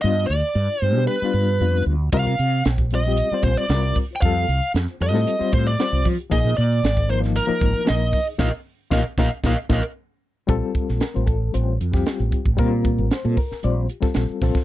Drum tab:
HH |----------------|xxxxxxxxxxxxxxo-|x-xxxxxxxxxxxxox|xxxxxxxxxxxxxxo-|
SD |----------------|----o-------o---|----o--o----o---|----o--o----o---|
BD |----------------|o----o----o---o-|o---------o---o-|o----o----o---o-|

HH |----------------|x-x-x-x-x-x-x-x-|x-x-x-o-x-x-x-o-|
SD |o---o-o-o-o-----|---oo------oo---|----o--o---oo-oo|
BD |o---o-o-o-o-----|o-o---o----o--oo|o-o---o----o--oo|